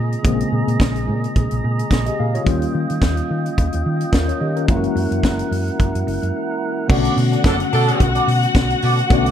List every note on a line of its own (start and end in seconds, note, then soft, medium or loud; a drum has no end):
0.00 0.15 A#2 medium
0.00 0.20 C#3 medium
0.00 0.21 G#3 medium
0.00 0.21 A#3 medium
0.00 0.22 C4 medium
0.00 0.25 F4 medium
0.00 2.42 G#4 medium
0.00 4.64 D#5 medium
0.00 2.42 A#5 medium
0.12 closed hi-hat soft
0.23 0.42 A#1 loud
0.23 2.42 C#3 medium
0.23 2.42 G#3 medium
0.23 2.43 A#3 medium
0.23 2.43 C4 medium
0.23 1.88 G#4 medium
0.23 kick loud
0.23 closed hi-hat medium
0.40 closed hi-hat soft
0.52 0.62 A#2 medium
0.67 0.75 A#2 medium
0.67 closed hi-hat soft
0.80 1.09 A#1 loud
0.80 kick loud
0.80 snare loud
0.80 closed hi-hat medium
0.96 closed hi-hat soft
1.08 1.26 A#2 loud
1.24 closed hi-hat soft
1.36 1.46 A#1 medium
1.36 kick loud
1.36 closed hi-hat medium
1.51 1.59 A#1 medium
1.51 closed hi-hat soft
1.64 1.81 A#2 medium
1.79 closed hi-hat soft
1.91 2.08 A#1 medium
1.91 kick loud
1.91 snare medium
1.91 closed hi-hat medium
2.06 2.18 G4 medium
2.06 2.18 D#5 medium
2.06 closed hi-hat medium
2.19 2.37 A#2 medium
2.19 2.34 G#4 soft
2.19 2.34 F5 medium
2.35 2.46 F4 soft
2.35 2.61 C#5 medium
2.35 closed hi-hat soft
2.44 2.64 D#2 loud
2.44 4.35 D#3 medium
2.44 4.36 G3 medium
2.44 4.36 A#3 medium
2.44 4.09 C#4 medium
2.44 4.10 F4 medium
2.44 4.66 F4 medium
2.44 4.66 G5 medium
2.44 kick loud
2.44 closed hi-hat medium
2.62 closed hi-hat soft
2.75 2.84 D#3 loud
2.90 2.98 D#3 medium
2.90 closed hi-hat soft
3.02 3.19 D#2 loud
3.02 kick loud
3.02 snare loud
3.02 closed hi-hat medium
3.17 closed hi-hat soft
3.31 3.48 D#3 medium
3.46 closed hi-hat soft
3.58 3.68 D#2 medium
3.58 kick medium
3.58 closed hi-hat medium
3.73 3.81 D#2 medium
3.73 closed hi-hat soft
3.86 4.03 D#3 medium
4.01 closed hi-hat soft
4.13 4.30 D#2 medium
4.13 4.28 C#4 soft
4.13 4.28 A#4 medium
4.13 kick loud
4.13 snare loud
4.13 closed hi-hat medium
4.28 4.40 F4 soft
4.28 4.40 C#5 medium
4.28 closed hi-hat soft
4.41 4.70 D#3 medium
4.41 4.56 G4 medium
4.41 4.55 D#5 medium
4.56 4.68 C#4 soft
4.56 4.82 A#4 medium
4.56 closed hi-hat soft
4.68 4.86 F#1 loud
4.68 6.85 E3 medium
4.68 6.85 G#3 medium
4.68 6.86 A#3 medium
4.68 6.86 C#4 medium
4.68 6.88 E4 medium
4.68 4.77 F4 medium
4.68 6.88 A#4 medium
4.68 6.88 F#5 medium
4.68 kick loud
4.68 closed hi-hat medium
4.77 6.90 F#4 medium
4.84 closed hi-hat soft
4.95 5.05 F#2 medium
4.95 open hi-hat soft
5.11 5.19 F#2 medium
5.11 closed hi-hat soft
5.23 5.41 F#1 loud
5.23 kick medium
5.23 snare loud
5.23 closed hi-hat medium
5.39 closed hi-hat soft
5.51 5.69 F#2 medium
5.51 open hi-hat medium
5.68 closed hi-hat soft
5.80 5.89 F#1 medium
5.80 kick loud
5.80 closed hi-hat medium
5.95 6.02 F#2 medium
5.95 closed hi-hat soft
6.07 6.17 F#1 loud
6.07 open hi-hat medium
6.23 6.30 F#2 medium
6.23 closed hi-hat soft
6.88 7.07 B1 loud
6.88 6.96 C#3 medium
6.88 9.06 A3 medium
6.88 7.15 B3 medium
6.88 9.06 B3 medium
6.88 9.06 C#4 medium
6.88 7.15 F#4 loud
6.88 9.31 F#4 loud
6.88 9.07 F#4 medium
6.88 7.16 A4 loud
6.88 7.16 D5 loud
6.88 9.31 F#5 loud
6.88 kick loud
6.88 crash loud
6.95 9.08 D3 medium
7.05 closed hi-hat medium
7.17 7.34 B2 loud
7.17 muted clean electric guitar stroke soft
7.17 open hi-hat medium
7.32 7.43 B3 soft
7.32 7.43 F#4 medium
7.32 7.43 A4 medium
7.32 7.43 D5 medium
7.32 closed hi-hat medium
7.44 7.62 F#1 loud
7.44 7.55 F#3 medium
7.44 7.65 B3 medium
7.44 7.55 D4 medium
7.44 7.61 F#4 medium
7.44 7.55 A4 loud
7.44 7.60 A4 loud
7.44 7.60 D5 loud
7.44 kick loud
7.44 snare loud
7.44 closed hi-hat medium
7.60 muted clean electric guitar stroke soft
7.60 closed hi-hat soft
7.72 7.90 B2 loud
7.72 8.09 F#3 loud
7.72 8.09 D4 loud
7.72 8.09 A4 loud
7.72 muted clean electric guitar stroke soft
7.72 open hi-hat medium
7.88 8.00 B3 medium
7.88 8.00 F#4 medium
7.88 7.99 A4 medium
7.88 7.99 D5 medium
7.88 closed hi-hat soft
8.00 8.18 B1 loud
8.00 kick loud
8.00 closed hi-hat medium
8.15 8.28 B3 medium
8.15 8.28 F#4 medium
8.15 8.28 A4 medium
8.15 8.28 D5 loud
8.15 closed hi-hat medium
8.27 8.45 B2 loud
8.27 muted clean electric guitar stroke soft
8.27 open hi-hat medium
8.43 muted clean electric guitar stroke soft
8.43 closed hi-hat medium
8.55 8.73 B1 medium
8.55 muted clean electric guitar stroke soft
8.55 kick loud
8.55 snare loud
8.55 closed hi-hat medium
8.70 muted clean electric guitar stroke medium
8.70 closed hi-hat medium
8.82 9.00 B2 medium
8.82 9.00 B3 medium
8.82 9.00 F#4 loud
8.82 8.99 A4 loud
8.82 8.98 D5 loud
8.82 open hi-hat medium
8.99 muted clean electric guitar stroke soft
8.99 closed hi-hat soft
9.09 9.28 B1 loud
9.09 9.31 D3 medium
9.09 9.31 A3 medium
9.09 9.31 B3 medium
9.09 9.31 B3 loud
9.09 9.31 C#4 medium
9.09 9.31 F#4 loud
9.09 9.31 F#4 medium
9.09 9.31 A4 loud
9.09 9.31 D5 loud
9.09 kick loud
9.09 closed hi-hat medium
9.26 closed hi-hat medium